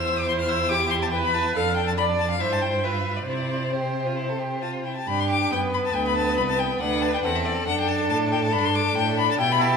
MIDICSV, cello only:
0, 0, Header, 1, 2, 480
1, 0, Start_track
1, 0, Key_signature, 0, "major"
1, 0, Tempo, 424628
1, 1759, Time_signature, 4, 2, 24, 8
1, 3202, Tempo, 445434
1, 5617, Key_signature, 1, "major"
1, 6562, Tempo, 428571
1, 10839, End_track
2, 0, Start_track
2, 0, Title_t, "Cello"
2, 0, Program_c, 0, 42
2, 0, Note_on_c, 0, 40, 66
2, 1723, Note_off_c, 0, 40, 0
2, 1762, Note_on_c, 0, 41, 59
2, 2719, Note_on_c, 0, 43, 59
2, 2736, Note_off_c, 0, 41, 0
2, 3679, Note_off_c, 0, 43, 0
2, 3685, Note_on_c, 0, 48, 43
2, 5363, Note_off_c, 0, 48, 0
2, 5619, Note_on_c, 0, 43, 66
2, 6060, Note_off_c, 0, 43, 0
2, 6090, Note_on_c, 0, 42, 54
2, 6552, Note_off_c, 0, 42, 0
2, 6565, Note_on_c, 0, 38, 67
2, 7038, Note_on_c, 0, 36, 67
2, 7055, Note_off_c, 0, 38, 0
2, 7518, Note_off_c, 0, 36, 0
2, 7524, Note_on_c, 0, 38, 66
2, 7999, Note_off_c, 0, 38, 0
2, 8007, Note_on_c, 0, 40, 62
2, 8482, Note_off_c, 0, 40, 0
2, 8492, Note_on_c, 0, 42, 66
2, 8976, Note_on_c, 0, 45, 61
2, 8993, Note_off_c, 0, 42, 0
2, 9458, Note_on_c, 0, 43, 64
2, 9475, Note_off_c, 0, 45, 0
2, 9930, Note_off_c, 0, 43, 0
2, 9936, Note_on_c, 0, 45, 61
2, 10400, Note_off_c, 0, 45, 0
2, 10410, Note_on_c, 0, 47, 75
2, 10839, Note_off_c, 0, 47, 0
2, 10839, End_track
0, 0, End_of_file